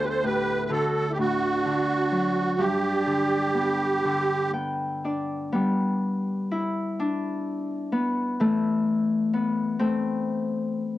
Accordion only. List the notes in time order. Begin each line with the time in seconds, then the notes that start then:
0.05 B4
0.10 C5
0.25 B4
0.66 B4
0.72 A4
1.12 G4
1.20 F#4
2.59 G4